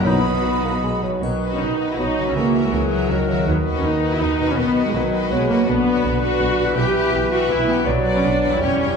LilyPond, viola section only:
\new Staff \with { instrumentName = "Viola section" } { \time 3/4 \key b \major \tempo 4 = 162 <fis b>2~ <fis b>8 r8 | fis8. cis'16 dis'8. e'16 dis'8. cis'16 | ais8. gis16 fis2 | fis8. cis'16 dis'8. e'16 dis'8. cis'16 |
b8. gis16 fis4 gis8 ais8 | \key b \minor b4. fis'4. | g'4. fis'8 e'8 b8 | fis8. cis'16 d'8. e'16 cis'4 | }